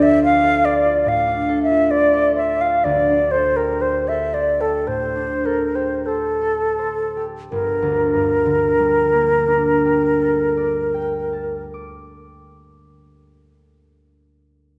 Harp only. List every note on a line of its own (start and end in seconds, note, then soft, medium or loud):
0.00 2.84 D2 medium
0.00 1.26 D4 soft
0.00 0.84 F4 soft
0.00 0.42 A4 soft
0.00 2.91 D5 soft
0.23 0.63 C5 soft
0.43 1.48 A4 soft
0.64 1.90 C5 soft
0.85 1.70 F4 soft
1.06 2.86 A2 soft
1.27 3.08 D4 soft
1.49 2.12 A4 soft
1.71 2.60 F4 soft
1.91 2.35 C5 soft
2.13 3.32 A4 soft
2.36 3.81 C5 soft
2.61 2.88 F4 soft
2.85 6.75 D2 medium
3.10 5.15 D4 soft
3.33 4.08 A4 soft
3.58 4.59 G4 soft
3.82 4.33 C5 soft
4.10 5.44 A4 soft
4.34 6.07 C5 soft
4.60 5.74 G4 soft
4.87 7.56 A2 soft
5.16 9.06 D4 soft
5.45 6.40 A4 soft
5.75 7.15 G4 soft
6.08 6.78 C5 soft
6.41 10.20 A4 soft
6.79 7.57 C5 soft
7.17 9.84 G4 soft
7.52 11.63 G1 soft
7.82 11.94 D2 soft
8.14 12.25 G2 soft
8.46 12.57 D3 soft
8.79 12.90 G3 soft
9.12 13.24 A#3 soft
9.48 13.59 D4 soft
9.85 13.97 G4 soft
10.21 14.25 A4 soft
10.57 14.25 D5 soft
10.94 14.24 G5 soft
11.33 14.24 A5 soft
11.74 14.24 D6 soft